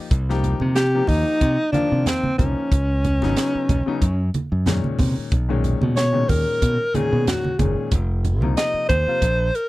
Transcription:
Already playing: grand piano F3 A#3 D#4 G4
0.11 fingered electric bass C2, kick, closed hi-hat
0.29 grand piano F3 A#3 D#4 G4, snare
0.43 closed hi-hat, low conga
0.60 fingered electric bass C3, high conga
0.76 alto saxophone G4, snare, closed hi-hat
0.95 grand piano F3 A#3 D#4 G4
1.07 fingered electric bass D#2, alto saxophone D#4, kick, open hi-hat, low conga
1.41 fingered electric bass C3, kick, closed hi-hat
1.72 grand piano D#3 F3 A#3 F4, alto saxophone D4, muted fingered electric bass stroke, closed hi-hat, high conga
1.92 fingered electric bass C3
2.06 alto saxophone C4, snare, closed hi-hat, low conga
2.23 muted fingered electric bass stroke, high conga
2.38 fingered electric bass C2, grand piano F3 A#3 D#4 A#4, alto saxophone C#4, kick, closed hi-hat, high conga, low conga
2.71 fingered electric bass C#2, kick, closed hi-hat
3.05 closed hi-hat, low conga
3.22 fingered electric bass G#1, grand piano C#3 F#3 B3 D#4, snare, high conga
3.36 snare, closed hi-hat
3.55 muted fingered electric bass stroke
3.69 fingered electric bass B1, kick, closed hi-hat, high conga, low conga
3.86 grand piano C#3 F#3 B3 D#4
4.02 fingered electric bass F#2, kick, closed hi-hat
4.34 closed hi-hat, high conga
4.52 fingered electric bass F#2
4.66 grand piano A#2 D#3 G#3 C#4, snare, closed hi-hat, low conga
4.84 high conga
4.99 fingered electric bass C3, kick, open hi-hat, high conga, low conga
5.18 muted fingered electric bass stroke
5.32 fingered electric bass B1, kick, closed hi-hat
5.49 grand piano A#2 D#3 G#3 C#4
5.64 closed hi-hat, low conga
5.82 fingered electric bass B2, high conga
5.96 alto saxophone C#5, snare, closed hi-hat
6.13 grand piano A#2 D#3 G#3 C#4
6.29 fingered electric bass D#2, alto saxophone A#4, kick, open hi-hat, low conga
6.62 fingered electric bass B2, kick, closed hi-hat
6.94 grand piano A#2 D#3 G#3 C#4, alto saxophone G#4, muted fingered electric bass stroke, closed hi-hat, high conga
7.13 fingered electric bass B2
7.27 alto saxophone F#4, snare, closed hi-hat, low conga
7.44 muted fingered electric bass stroke, high conga
7.59 fingered electric bass F#1, grand piano A#2 D#3 G#3 C#4, alto saxophone G#4, kick, closed hi-hat, high conga, low conga
7.91 fingered electric bass F1, kick, closed hi-hat
8.25 closed hi-hat, low conga
8.41 fingered electric bass C2, grand piano C3 F3 A#3 D#4, high conga
8.57 alto saxophone D#5, snare, closed hi-hat
8.74 muted fingered electric bass stroke
8.89 fingered electric bass D#2, alto saxophone C5, kick, closed hi-hat, low conga
9.06 grand piano C3 F3 A#3 F4, muted fingered electric bass stroke
9.22 fingered electric bass A#1, kick, closed hi-hat
9.55 alto saxophone A#4, closed hi-hat

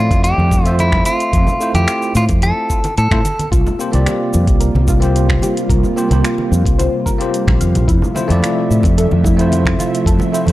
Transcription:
Already playing: tine electric piano F3 A3 C4 E4 D5
0.00 clean electric guitar F4
0.11 fretless electric bass F2, kick, closed hi-hat, muted conga, cabasa
0.24 clean electric guitar G4, closed hi-hat, cabasa
0.38 fretless electric bass F2, muted conga, high conga
0.51 kick, low conga, cabasa
0.64 tine electric piano A3 C4 F4 E5, clean electric guitar F4, closed hi-hat, cabasa
0.68 tine electric piano C5
0.79 clean electric guitar E4, closed hi-hat, muted conga, cabasa
0.92 finger snap, kick, low conga
1.05 clean electric guitar F4, closed hi-hat, muted conga, cabasa
1.20 closed hi-hat, cabasa
1.33 fretless electric bass F2, kick, closed hi-hat, cabasa
1.47 muted conga, low conga, cabasa
1.60 tine electric piano A3 C4 E4 F4 C5, cabasa
1.74 fretless electric bass F2, tine electric piano A3 C4 E4 F4 C5, clean electric guitar G4, closed hi-hat, muted conga, high conga, cabasa
1.88 finger snap, closed hi-hat, cabasa
2.02 cabasa
2.15 fretless electric bass A2, clean electric guitar F4, closed hi-hat, muted conga, cabasa
2.29 fretless electric bass F2, kick, closed hi-hat, cabasa
2.42 clean electric guitar A4, closed hi-hat, muted conga, cabasa
2.70 kick, cabasa
2.84 closed hi-hat, muted conga, cabasa
2.97 fretless electric bass A2, clean electric guitar A4, closed hi-hat, cabasa
3.11 fretless electric bass A2, tine electric piano A3 C4 E4 F4 C5, finger snap, kick, muted conga, low conga
3.25 closed hi-hat, high conga, cabasa
3.39 closed hi-hat, high conga, cabasa
3.52 fretless electric bass C2, analog synth pad C3 G3 A#3 F4, synth pluck F4, kick, closed hi-hat, cabasa
3.66 muted conga, low conga, cabasa
3.79 tine electric piano A#3 C4 F4 G4 C5, cabasa
3.92 fretless electric bass C2, tine electric piano A#3 C4 F4 G4 D5, closed hi-hat, high conga, cabasa
4.06 synth pluck G4, finger snap, closed hi-hat, muted conga, cabasa
4.33 fretless electric bass F2, muted conga, cabasa
4.47 fretless electric bass C2, kick, closed hi-hat, cabasa
4.60 synth pluck A#4, closed hi-hat, cabasa
4.75 fretless electric bass C2, muted conga, high conga
4.88 synth pluck F4, kick, low conga, cabasa
5.00 tine electric piano A#3 C4 F4 G4 C5, closed hi-hat, muted conga, cabasa
5.16 closed hi-hat, cabasa
5.29 finger snap, kick, low conga
5.42 synth pluck G4, closed hi-hat, muted conga, cabasa
5.57 closed hi-hat, cabasa
5.69 fretless electric bass C2, synth pluck A#4, kick, closed hi-hat, muted conga, cabasa
5.83 low conga, cabasa
5.96 tine electric piano A#3 C4 F4 G4 C5, cabasa
6.09 fretless electric bass C2, tine electric piano A#3 C4 F4 G4 C5, closed hi-hat, muted conga, high conga, cabasa
6.24 synth pluck F4, finger snap, closed hi-hat, cabasa
6.38 muted conga
6.52 fretless electric bass F2, cabasa
6.65 fretless electric bass C2, kick, closed hi-hat, cabasa
6.78 synth pluck C5, closed hi-hat, muted conga, cabasa
7.06 synth pluck A#4, kick, muted conga, cabasa
7.18 tine electric piano A#3 C4 F4 G4 C5, closed hi-hat, cabasa
7.34 closed hi-hat, cabasa
7.47 fretless electric bass A#1, finger snap, kick, muted conga, low conga
7.61 fretless electric bass F2, synth pluck F5, closed hi-hat, high conga, cabasa
7.75 fretless electric bass A#1, closed hi-hat, muted conga, high conga, cabasa
7.87 fretless electric bass F2, analog synth pad F3 A3 E5, synth pluck E4, kick, closed hi-hat, cabasa
8.02 low conga, cabasa
8.15 tine electric piano A3 C4 E4 F4 C5, muted conga, cabasa
8.28 fretless electric bass F2, tine electric piano A3 C4 E4 F4 D5, closed hi-hat, high conga, cabasa
8.42 synth pluck F4, finger snap, closed hi-hat, muted conga, cabasa
8.71 fretless electric bass A2, cabasa
8.83 fretless electric bass F2, kick, closed hi-hat, muted conga, cabasa
8.98 synth pluck A4, closed hi-hat, cabasa
9.11 fretless electric bass F2, muted conga, high conga
9.24 synth pluck E4, kick, low conga, cabasa
9.37 tine electric piano A3 C4 E4 F4, closed hi-hat, cabasa
9.41 tine electric piano C5
9.52 closed hi-hat, muted conga, cabasa
9.66 finger snap, kick, low conga
9.79 synth pluck F4, closed hi-hat, muted conga, cabasa
9.95 closed hi-hat, cabasa
10.06 fretless electric bass F2, synth pluck A4, kick, closed hi-hat, cabasa
10.19 muted conga, low conga, cabasa
10.32 tine electric piano A3 C4 E4 F4 C5, closed hi-hat, cabasa
10.46 fretless electric bass F2, tine electric piano A3 C4 E4 F4, closed hi-hat, muted conga, high conga, cabasa

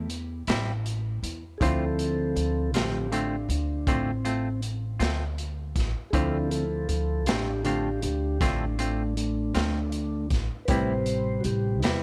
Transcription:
Already playing: upright bass E2, upright piano C4 G4 B4
0.10 closed hi-hat
0.47 upright bass A1, clean electric guitar G3 C4 E4, snare, closed hi-hat
0.86 closed hi-hat
1.23 upright bass E2, closed hi-hat
1.58 upright bass D2, tonewheel organ D3 F3 G#4, clean electric guitar D3, upright piano E4 F4, kick, closed hi-hat
1.62 clean electric guitar A3 C4 F4, tonewheel organ C4 A4, upright piano C5
1.99 closed hi-hat
2.36 upright bass D2, closed hi-hat
2.73 upright bass A1, tonewheel organ D3 F3 C4 G4, clean electric guitar A3 C4 F4, snare, closed hi-hat
3.12 clean electric guitar D3 A3 C4 F4, tonewheel organ D4, closed hi-hat
3.49 upright bass D2, tonewheel organ D4, closed hi-hat
3.87 upright bass A1, clean electric guitar D3 A3 C4 F4, tonewheel organ C4, kick, closed hi-hat
4.25 clean electric guitar A3 C4 F4, closed hi-hat
4.62 closed hi-hat
5.00 upright bass D2, clean electric guitar A3 C4 F4, snare, closed hi-hat
5.38 closed hi-hat
5.76 upright bass A1, kick, snare, closed hi-hat
6.10 upright bass D2, clean electric guitar D3 A3 C4, tonewheel organ D3 F3 D4 G#4, upright piano E4 F4, kick, closed hi-hat
6.15 tonewheel organ C4 A4, clean electric guitar F4, upright piano C5
6.51 tonewheel organ F3 A4, closed hi-hat
6.89 upright bass D2, tonewheel organ F3 A4, closed hi-hat
7.26 upright bass A1, clean electric guitar A3 C4 F4, tonewheel organ D4 G4, snare, closed hi-hat
7.64 clean electric guitar D3 A3 C4 F4, tonewheel organ D4 G4, closed hi-hat
8.02 upright bass D2, tonewheel organ D4 G4, closed hi-hat
8.40 upright bass A1, clean electric guitar D3 A3 C4 F4, tonewheel organ A3 D4, kick, snare, closed hi-hat
8.78 tonewheel organ A3 D4, clean electric guitar A3 C4 F4, closed hi-hat
9.17 tonewheel organ A3 D4, closed hi-hat
9.54 upright bass D2, tonewheel organ A3 D4, clean electric guitar A3 C4 F4, snare, closed hi-hat
9.92 closed hi-hat
10.30 upright bass A1, kick, snare, closed hi-hat
10.65 upright bass A1, tonewheel organ C3 G3 B4, upright piano C4 G4, kick, closed hi-hat
10.70 clean electric guitar A2 G3 C4 E4, upright piano B4, tonewheel organ C5
11.06 closed hi-hat
11.41 upright bass A1, tonewheel organ F#4, closed hi-hat
11.45 tonewheel organ G4
11.80 upright bass E2, tonewheel organ C3 G3 D#4 B4, clean electric guitar E4, closed hi-hat
11.84 clean electric guitar G3 C4, tonewheel organ E4, snare

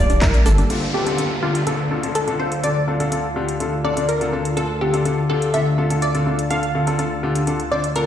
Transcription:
Already playing: analog synth pad G3 A#3 D4 G4, synth pluck D5
0.10 analog synth bass D1, synth arpeggio sound D4, closed hi-hat, shaker
0.21 analog synth bass G1, synth arpeggio sound E4, synth pluck A#4, kick, clap, closed hi-hat, shaker
0.34 synth arpeggio sound D4, closed hi-hat, shaker
0.46 analog synth bass G1, synth arpeggio sound D4, synth pluck A4, open hi-hat, mid tom, high conga, shaker
0.58 synth arpeggio sound D4, closed hi-hat, shaker
0.70 analog synth pad D2 D3 F4 A5, grand piano D3 D4 F4 A4, closed hi-hat, crash, downlifter
0.94 grand piano D3 D4 F4 A4, synth pluck G4
1.07 grand piano D3 D4 F4 A4, closed hi-hat
1.18 grand piano D3 D4 F4 A4, closed hi-hat
1.43 grand piano D3 D4 F4 G4, synth pluck F4
1.55 closed hi-hat
1.67 grand piano D3 D4 F4 A4, synth pluck A4, closed hi-hat
1.91 grand piano D3 D4 F4 A4
2.03 grand piano D3 D4 F4 A4, closed hi-hat
2.15 synth pluck A4, closed hi-hat
2.28 grand piano D3 D4 F4 A4, closed hi-hat
2.39 grand piano D3 D4 F4 A4, synth pluck C5
2.52 closed hi-hat
2.64 grand piano D3 D4 F4 A4, synth pluck D5, closed hi-hat
2.88 grand piano D3 D4 F4 A4
3.00 grand piano D3 D4 F4 A4, closed hi-hat
3.12 grand piano D3 D4 F4 A4, closed hi-hat
3.36 grand piano D3 D4 F4 G4
3.49 closed hi-hat
3.60 grand piano D3 D4 F4 A4, closed hi-hat
3.84 grand piano D3 D4 F4 A4, synth pluck D5
3.97 grand piano D3 D4 F4 A4, closed hi-hat
4.09 synth pluck A#4, closed hi-hat
4.21 grand piano D3 D4 F4 A4, closed hi-hat
4.33 grand piano D3 D4 F4 A4
4.45 closed hi-hat
4.57 grand piano D3 D4 F4 A4, synth pluck A4, closed hi-hat
4.81 grand piano D3 D4 F4 A4, synth pluck G4
4.94 grand piano D3 D4 F4 A4, closed hi-hat
5.05 grand piano D3 D4 F4 A4, closed hi-hat
5.30 grand piano D3 D4 F4 G4, synth pluck A4
5.42 closed hi-hat
5.54 grand piano D3 D4 F4 A4, synth pluck E5, closed hi-hat
5.78 grand piano D3 D4 F4 A4
5.90 grand piano D3 D4 F4 A4, closed hi-hat
6.02 synth pluck D5, closed hi-hat
6.15 grand piano D3 D4 F4 A4, closed hi-hat
6.26 grand piano D3 D4 F4 A4
6.39 closed hi-hat
6.51 grand piano D3 D4 F4 A4, synth pluck F5, closed hi-hat
6.63 closed hi-hat
6.75 grand piano D3 D4 F4 A4
6.87 grand piano D3 D4 F4 A4, closed hi-hat
6.99 grand piano D3 D4 F4 A4, closed hi-hat
7.23 grand piano D3 D4 F4 G4
7.35 closed hi-hat
7.47 grand piano D3 D4 F4 A4, closed hi-hat
7.60 closed hi-hat
7.71 grand piano D3 D4 F4 C5, synth pluck D5
7.84 closed hi-hat
7.96 grand piano D3 D4 F4 A4, synth pluck A#4, closed hi-hat

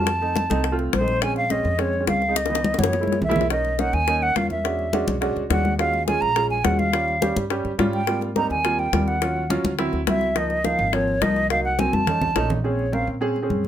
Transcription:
Already playing: upright bass F2, flute A5
0.00 upright piano F4
0.07 high bongo, high conga
0.21 upright piano A3 C4 D#4, high conga
0.36 high bongo, high conga
0.50 upright bass C2, upright piano A3 C4 D#4, high bongo, high conga
0.64 high bongo, high conga
0.72 upright piano A3 C4 F4
0.79 high bongo, high conga
0.93 upright bass A#1, flute C5, high bongo, low bongo, high conga
1.00 upright piano A3 C4 D#4
1.08 high bongo, high conga
1.22 upright piano G#3 C4 C#4, flute G#5, high bongo, high conga
1.36 flute F5, high bongo, high conga
1.50 upright piano G#3 C4 C#4, flute D#5, high bongo, high conga
1.64 upright bass F2, high bongo, high conga
1.78 upright piano G#3 C4 C#4, flute C#5, high bongo, high conga
1.93 high conga
2.00 upright piano G#3 C4 C#4
2.07 upright bass C#2, flute F5, high bongo, low bongo, high conga
2.22 high bongo
2.28 upright piano G#3 C4 D#4
2.36 flute D#5, high bongo, high conga
2.46 upright piano E3, high bongo
2.50 upright piano B3 D#4, high conga
2.55 high bongo
2.64 high conga
2.74 upright piano E3, high bongo
2.79 upright bass F#2, upright piano B3 F#4, flute C#5, high conga
2.84 high bongo
2.93 low bongo, high conga
3.00 upright piano G#3 A#3 E4, low bongo
3.08 high conga
3.12 low bongo
3.22 upright bass B1, flute E5, low conga
3.29 upright piano G#3 A#3 E4, low bongo
3.36 low conga
3.41 low bongo
3.50 upright piano A#3 C#4 D#4, flute D#5, high bongo, high conga
3.65 high bongo, high conga
3.79 upright piano A#3 C#4 D#4, flute F#5, high bongo, high conga
3.93 upright bass D#2, flute G#5, high bongo, high conga
4.07 upright piano A#3 C#4 D#4, high bongo, high conga
4.22 flute F#5, high conga
4.35 upright bass E2, upright piano A#3 C#4 F4, flute F5, high bongo, low bongo, high conga
4.50 flute E5, high bongo, high conga
4.64 upright piano G#3 C#4 D4 F#4, high bongo, high conga
4.79 high conga
4.93 upright piano G#3 C#4 D4 F#4, high bongo, high conga
5.07 upright bass B1, high bongo, high conga
5.21 upright piano G#3 C#4 D4 F#4, high bongo, high conga
5.36 upright bass C#2, high bongo, high conga
5.50 upright bass D#2, upright piano G#3 C#4 D4 F#4, flute F#5, high bongo, low bongo, high conga
5.65 high bongo, high conga
5.78 upright piano G#3 C#4 F4 F#4, flute F5, high bongo, high conga
5.93 high bongo, high conga
6.07 upright piano G#3 C#4 F4 G#4, flute G#5, high bongo, high conga
6.21 upright bass A#1, flute A#5, high bongo, high conga
6.36 upright piano G#3 C#4 F4 G#4, high bongo, high conga
6.50 flute G#5, high conga
6.64 upright bass D#2, upright piano G#3 C#4 F4 F#4, flute F#5, high bongo, low bongo, high conga
6.79 flute F5, high bongo, high conga
6.92 upright piano G3 C#4 F4, high bongo, high conga
7.08 high conga
7.21 upright piano G3 C#4 G4, high bongo, high conga
7.36 upright bass G2, high bongo, high conga
7.50 upright piano G3 C#4 G4, high bongo, high conga
7.65 upright bass G2, high bongo, high conga
7.78 upright bass G#2, upright piano G3 C#4 F4, high bongo, low bongo, high conga
7.93 flute G5, high bongo
8.07 upright piano G3 A#3 C4 F4, high bongo, high conga
8.21 high bongo, high conga
8.36 upright piano G3 A#3 C4 D#4, flute A#5, high bongo, high conga
8.50 upright bass D#2, flute G#5, high bongo, high conga
8.64 upright piano G3 A#3 C4 F4, high bongo, high conga
8.79 flute G5, high conga
8.93 upright bass D#2, upright piano G3 A#3 C4 F4, high bongo, low bongo, high conga
9.08 flute F#5, high bongo
9.21 upright piano F#3 C#4 F4, high bongo
9.36 high conga
9.50 upright piano F#3 C#4 F4, high bongo, high conga
9.64 upright bass D2, high bongo, high conga
9.78 upright piano F#3 C4 E4, high bongo, high conga
9.93 upright bass D2, high bongo, high conga
10.07 upright bass C#2, upright piano F#3 C4 E4, flute E5, high bongo, low bongo, high conga
10.21 high bongo
10.35 upright piano F3 A#3 D#4, flute D#5, high bongo, high conga
10.50 high bongo, high conga
10.64 upright piano F3 A#3 D#4, flute F5, high bongo, high conga
10.79 upright bass G#1, high bongo, high conga
10.93 upright piano F3 A#3 C4, flute C#5, high bongo, high conga
11.08 high conga
11.22 upright bass C2, upright piano F3 A#3 D#4, flute D#5, high bongo, low bongo, high conga
11.36 high bongo
11.50 upright piano F#3 A#3 D#4, flute F5, high bongo
11.64 flute F#5, high conga
11.79 upright piano F#3 A#3 C4, flute G#5, high bongo, high conga
11.93 upright bass F2, flute A5, high bongo, high conga
12.07 upright piano A3 C#4 D#4, high bongo, low conga
12.21 upright bass C2, high bongo, low conga
12.35 upright bass A#1, upright piano A3 C#4 D#4, high bongo, low bongo
12.50 high bongo, low conga
12.64 upright piano C4 C#4 G#4, flute C#5, high conga
12.79 high conga
12.92 upright piano C4 C#4 A#4, flute F5, high conga
13.07 upright bass A#2, high conga
13.21 upright piano C4 C#4 G#4, high conga
13.36 high conga
13.42 upright piano C4 C#4 G#4
13.50 upright bass F#2, high conga
13.65 high conga

